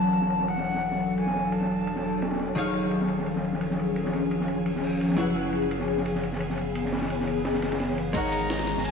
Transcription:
Already playing: sub bass E1, hollow-body jazz guitar E3 E4 A4 D5 F#5, ambient pad F#3 D4 A4, flute A5
0.04 ride
0.13 ride
0.22 snare
0.30 ride
0.39 snare
0.47 flute F#5, ride
0.57 snare
0.64 ride
0.74 snare
0.82 ride
0.91 snare
1.00 ride
1.17 flute G#5, ride
1.26 snare
1.35 snare, ride
1.52 flute A5, ride
1.61 snare
1.87 ride
1.95 snare
2.04 open hi-hat
2.22 snare, ride
2.31 snare, ride
2.35 snare, ride
2.39 snare, ride
2.55 sub bass D#1, hollow-body jazz guitar D#3 D#4 G#4 C#5 F5, ambient pad F3 C#4 G#4, ride
2.74 ride
2.83 ride
2.91 ride
3.01 snare
3.08 ride
3.18 snare
3.26 ride
3.36 snare
3.44 ride
3.53 snare
3.61 ride
3.70 snare
3.79 ride
3.96 ride
4.05 snare
4.13 snare, ride
4.31 ride
4.40 snare
4.48 ride
4.66 ride
4.76 snare
4.83 open hi-hat
5.01 ride
5.10 snare
5.16 sub bass F#1, ambient pad E3 B3, hollow-body jazz guitar F#3 E4 G#4 B4 F#5
5.36 ride
5.53 ride
5.62 ride
5.71 ride
5.80 snare
5.88 ride
5.97 snare
6.05 ride
6.15 snare
6.23 ride
6.32 snare
6.40 ride
6.49 snare
6.57 ride
6.75 ride
6.85 snare
6.92 snare, ride
6.97 snare, ride
7.02 snare, ride
7.10 ride
7.20 snare
7.27 ride
7.45 snare, ride
7.54 snare, ride
7.62 snare, ride
7.72 snare, ride
7.80 snare, ride
7.89 snare
7.98 ride
8.13 sub bass G#1, ambient pad F#3 C#4 A#4, hollow-body jazz guitar G#3 D#4 A#4 C#5 F#5, flute A#5, kick, closed hi-hat, crash, ride, tambourine
8.32 closed hi-hat, ride
8.42 ride, tambourine
8.50 snare, closed hi-hat, ride, tambourine
8.59 snare
8.67 closed hi-hat, ride, tambourine
8.76 sub bass G#1, snare
8.85 flute G#5, closed hi-hat, ride, tambourine

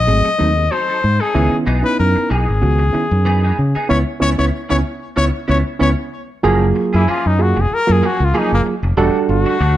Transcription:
Already playing: trumpet D#5
0.07 fingered electric bass G#1, reed electric piano F#3 A3 C4 G#4, muted clean electric guitar stroke
0.25 muted clean electric guitar stroke
0.38 fingered electric bass D#2, reed electric piano F#3 A3 C4 D#4, muted clean electric guitar stroke
0.56 reed electric piano C4 G#4
0.71 clean electric guitar F#3 C4 D#4 A4, trumpet C5
0.89 clean electric guitar F#3 C4 D#4 A4
1.03 fingered electric bass G#2, muted clean electric guitar stroke
1.20 clean electric guitar C4 D#4 A4, trumpet G#4
1.35 fingered electric bass C#2, reed electric piano D#3 B3 C#4 E4, clean electric guitar E3 B3 D#4 G#4
1.52 muted clean electric guitar stroke
1.66 fingered electric bass B1, clean electric guitar E3 B3 D#4 G#4
1.83 reed electric piano B3 C#4 D#4 E4, trumpet B4, muted clean electric guitar stroke
2.00 fingered electric bass F#2, trumpet A#4
2.16 muted clean electric guitar stroke, muted fingered electric bass stroke
2.30 fingered electric bass B1, clean electric guitar E3 B3 D#4 G#4, trumpet G#4
2.48 fingered electric bass G#1, muted clean electric guitar stroke
2.62 fingered electric bass C#2, reed electric piano D#3 B3 C#4 F#4, muted clean electric guitar stroke
2.79 muted clean electric guitar stroke
2.92 reed electric piano D#3 B3 C#4 E4, muted clean electric guitar stroke
3.10 fingered electric bass F#2, reed electric piano C#4 D#4
3.25 clean electric guitar E3 B3 D#4 G#4
3.43 clean electric guitar E3 B3 D#4 G#4
3.58 fingered electric bass C#3, muted clean electric guitar stroke
3.75 clean electric guitar B3 D#4 G#4, muted fingered electric bass stroke
3.89 fingered electric bass C#2, reed electric piano B3 C#4 E4, clean electric guitar B3 C#4 E4, trumpet C#5
4.20 fingered electric bass C#2, reed electric piano B3 C#4 E4, clean electric guitar B3 C#4 E4, trumpet C#5
4.38 fingered electric bass C#2, reed electric piano B3 C#4 E4, clean electric guitar B3 C#4 E4, trumpet C#5
4.69 fingered electric bass C#2, clean electric guitar B3 C#4 E4, reed electric piano B3 C#4 E4, trumpet C#5
5.16 fingered electric bass C#2, clean electric guitar B3 C#4 E4, reed electric piano B3 C#4 E4, trumpet C#5
5.48 fingered electric bass C#2, reed electric piano B3 C#4 E4, clean electric guitar B3 C#4 E4, trumpet C#5
5.79 fingered electric bass C#2, reed electric piano B3 C#4 E4, clean electric guitar B3 C#4 E4, trumpet C#5
6.43 fingered electric bass F#1, clean electric guitar F3 A#3 C#4 G#4, reed electric piano F#3 A#3 F4 G#4
6.75 muted clean electric guitar stroke
6.93 fingered electric bass F#2, clean electric guitar A#3 C#4 G#4, trumpet E4
7.08 clean electric guitar F3 A#3 C#4 G#4, trumpet F4, muted fingered electric bass stroke
7.25 fingered electric bass F#2, trumpet D#4, muted clean electric guitar stroke
7.38 reed electric piano F#3 A#3 F4 G#4, muted clean electric guitar stroke
7.42 trumpet F#4
7.56 fingered electric bass F1, muted clean electric guitar stroke
7.61 trumpet G#4
7.70 reed electric piano F4 G#4, muted fingered electric bass stroke
7.74 trumpet A#4
7.87 fingered electric bass F#2, reed electric piano F#3 A#3 F4 A#4, muted clean electric guitar stroke
7.92 trumpet G#4
8.02 clean electric guitar F3 A#3 C#4 G#4
8.06 trumpet F#4
8.20 fingered electric bass C#2, reed electric piano F4 A#4, muted clean electric guitar stroke
8.25 trumpet F4
8.34 clean electric guitar F3 A#3 C#4 G#4, reed electric piano F#3 A#3 F4 G#4
8.38 trumpet D#4
8.52 fingered electric bass F#1, trumpet A#3
8.66 muted clean electric guitar stroke
8.83 fingered electric bass F1, muted clean electric guitar stroke
8.97 fingered electric bass E1, clean electric guitar G3 A3 D4 F#4, reed electric piano G3 D4 F#4 A4
9.29 fingered electric bass G1, trumpet F#4, muted clean electric guitar stroke
9.45 clean electric guitar A3 D4 F#4
9.60 fingered electric bass D2, clean electric guitar G3 A3 D4 F#4

